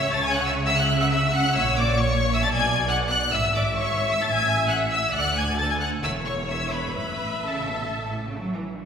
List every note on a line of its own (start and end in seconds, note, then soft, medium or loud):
0.00 1.52 C#2 loud
0.00 1.52 C#3 loud
0.00 0.68 C#5 loud
0.00 0.13 E5 loud
0.00 0.13 E6 loud
0.13 0.25 A5 loud
0.13 0.24 A6 loud
0.23 0.35 G#5 loud
0.23 0.35 G#6 loud
0.35 0.40 F#5 medium
0.35 0.46 F#6 loud
0.45 0.55 E5 loud
0.45 0.53 E6 loud
0.67 1.55 E5 loud
0.67 0.73 E5 loud
0.67 0.78 E6 loud
0.78 0.86 F#5 loud
0.78 1.00 F#6 loud
1.01 1.05 F#5 loud
1.01 1.06 F#6 loud
1.12 1.20 E5 loud
1.12 1.33 E6 loud
1.33 1.55 F#5 loud
1.33 1.55 F#6 loud
1.55 2.44 A#1 medium
1.55 2.44 A#2 loud
1.55 1.98 C#5 loud
1.55 1.63 E5 loud
1.55 1.78 E6 loud
1.77 1.99 D5 loud
1.77 1.99 D6 loud
1.99 2.43 C#5 loud
1.99 2.33 C#5 loud
1.99 2.33 C#6 loud
2.33 2.44 E5 loud
2.33 2.44 E6 loud
2.43 3.33 B1 loud
2.43 3.33 B2 loud
2.43 3.32 D5 loud
2.43 2.55 A5 loud
2.43 2.48 A6 loud
2.55 2.87 G#5 loud
2.55 2.88 G#6 loud
2.88 2.96 F#5 loud
2.88 2.96 F#6 loud
3.10 3.18 F#5 loud
3.10 3.32 F#6 loud
3.32 4.22 G#1 medium
3.32 4.22 G#2 medium
3.32 5.10 E5 loud
3.32 3.41 E5 loud
3.32 3.55 E6 loud
3.55 3.63 D5 loud
3.55 3.77 D6 loud
3.77 4.10 C#5 loud
3.77 4.11 C#6 loud
4.11 4.23 E5 medium
4.11 4.22 E6 loud
4.22 5.14 A1 loud
4.22 5.14 A2 medium
4.22 4.34 A5 loud
4.22 4.34 A6 loud
4.33 4.67 G#5 loud
4.33 4.68 G#6 loud
4.68 4.91 F#5 loud
4.68 4.76 F#6 loud
4.90 5.13 E5 loud
4.90 5.14 E6 loud
5.13 6.00 D2 loud
5.13 6.00 D2 medium
5.13 5.58 D5 loud
5.13 5.36 F#5 loud
5.13 5.36 F#6 loud
5.37 5.59 G#5 loud
5.37 5.59 G#6 loud
5.58 6.04 A4 medium
5.58 5.70 A5 loud
5.58 5.70 A6 loud
5.70 5.81 G#5 medium
5.70 5.75 G#6 medium
5.80 5.88 F#5 loud
5.80 5.89 F#6 loud
6.03 6.95 E1 medium
6.03 6.95 E2 medium
6.03 6.94 C#5 loud
6.03 6.12 E5 medium
6.03 6.12 E6 loud
6.26 6.49 C#5 loud
6.26 6.34 C#6 medium
6.49 6.73 E5 medium
6.49 6.73 E6 medium
6.72 6.94 B4 medium
6.72 6.97 B5 loud
6.95 8.67 A1 medium
6.95 7.40 A2 medium
6.95 7.43 B4 loud
6.95 8.64 E5 loud
6.95 7.44 B5 loud
7.44 7.67 C#3 medium
7.44 8.40 A4 medium
7.44 8.41 A5 medium
7.68 7.92 B2 medium
7.92 8.28 A2 medium
8.29 8.41 C#3 loud
8.40 8.53 F#3 loud
8.53 8.77 E3 medium
8.77 8.85 D3 medium